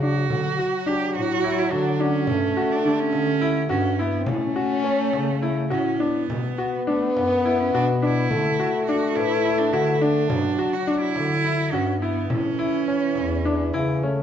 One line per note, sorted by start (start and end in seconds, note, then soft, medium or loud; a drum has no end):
0.00 0.26 C#3 medium
0.00 0.29 F#3 medium
0.00 0.23 D4 medium
0.00 0.88 F#4 medium
0.29 0.56 D3 medium
0.29 2.29 F#3 medium
0.29 frame drum medium
0.59 0.79 F#4 medium
0.86 1.27 D4 medium
0.86 1.15 G4 medium
1.15 1.68 A2 medium
1.15 1.60 F#4 medium
1.15 frame drum soft
1.44 1.64 E4 medium
1.59 1.73 E4 medium
1.71 2.24 D3 medium
1.71 2.02 D4 medium
1.71 1.92 F#4 medium
1.71 frame drum soft
2.00 2.73 C#4 medium
2.00 2.20 D4 medium
2.27 2.54 G2 medium
2.27 4.01 A3 medium
2.27 frame drum medium
2.57 2.77 F#4 medium
2.71 3.01 D4 medium
2.85 3.26 D3 medium
2.85 5.21 G4 medium
2.99 3.69 C#4 loud
3.13 3.67 D3 medium
3.13 frame drum soft
3.41 3.62 E4 medium
3.69 4.24 G2 medium
3.69 4.02 C#4 medium
3.69 3.91 F#4 medium
3.69 frame drum soft
3.99 4.27 B3 medium
3.99 4.20 E4 medium
4.18 4.29 C4 medium
4.26 4.54 A2 medium
4.26 5.67 A3 loud
4.26 6.00 C#4 loud
4.26 frame drum medium
4.56 4.77 F#4 medium
4.56 frame drum soft
4.84 5.26 C#4 medium
4.84 frame drum soft
5.13 5.67 C#3 medium
5.13 frame drum medium
5.42 5.63 E4 medium
5.70 6.26 A2 medium
5.70 6.02 C#4 medium
5.70 5.92 F#4 medium
5.70 frame drum soft
6.00 6.88 B3 medium
6.00 6.21 D4 medium
6.29 6.56 B2 medium
6.29 8.32 B3 medium
6.29 frame drum medium
6.58 6.79 F#4 medium
6.87 7.15 A3 medium
6.87 7.29 D4 medium
7.17 7.70 F#2 medium
7.17 7.61 B3 medium
7.17 frame drum medium
7.45 7.66 E4 medium
7.60 7.73 C#4 medium
7.74 8.27 B2 medium
7.74 7.87 D4 medium
7.74 7.95 F#4 medium
7.74 frame drum soft
8.02 8.23 D4 medium
8.02 8.84 E4 medium
8.31 8.57 D3 medium
8.31 10.31 A3 medium
8.31 frame drum medium
8.60 8.80 F#4 medium
8.86 9.30 D4 medium
8.86 9.17 F#4 medium
9.14 9.70 A2 medium
9.14 9.60 E4 medium
9.14 11.19 B4 medium
9.14 frame drum soft
9.45 9.66 E4 medium
9.58 9.74 D4 medium
9.73 10.26 D3 medium
9.73 9.95 E4 medium
9.73 9.94 F#4 medium
9.73 frame drum soft
9.95 10.04 E4 medium
10.01 10.22 D4 medium
10.01 10.75 D4 medium
10.30 10.57 G2 medium
10.30 12.03 F#3 medium
10.30 frame drum medium
10.59 10.79 F#4 medium
10.73 11.00 F#4 medium
10.87 11.29 D4 medium
11.01 11.73 E4 loud
11.16 11.69 D3 medium
11.16 frame drum medium
11.45 11.65 E4 medium
11.72 12.26 G2 medium
11.72 12.00 C#4 medium
11.72 11.94 F#4 medium
11.72 frame drum soft
12.01 12.31 B3 medium
12.01 12.23 E4 medium
12.29 12.57 A2 medium
12.29 14.06 E3 medium
12.29 14.03 C#4 medium
12.29 14.23 A4 medium
12.29 frame drum medium
12.58 12.79 E4 medium
12.58 frame drum soft
12.88 13.29 C#4 medium
12.88 frame drum soft
13.15 13.70 E2 medium
13.15 frame drum soft
13.45 13.66 D4 medium
13.45 frame drum soft
13.74 14.23 C#3 medium
13.74 13.95 E4 medium
13.74 frame drum soft
14.03 14.23 A3 medium
14.03 14.23 C#4 medium